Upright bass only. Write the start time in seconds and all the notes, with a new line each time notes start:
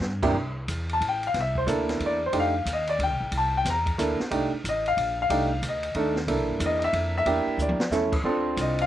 0.00 G2
0.34 C2
0.68 E2
1.00 A1
1.34 C2
1.66 D2
2.00 E2
2.33 F2
2.65 D#2
2.99 D2
3.10 C2
3.20 A1
3.32 C2
3.65 E2
3.98 D2
4.20 muted upright bass stroke
4.31 C2
4.64 A1
4.97 A#1
5.30 C2
5.62 D2
5.95 D#2
6.27 C2
6.38 A#1
6.49 G1
6.60 E2
6.93 F2
7.26 E2
7.47 muted upright bass stroke
7.57 D2
7.80 muted upright bass stroke
7.90 E2
8.24 D2
8.57 C2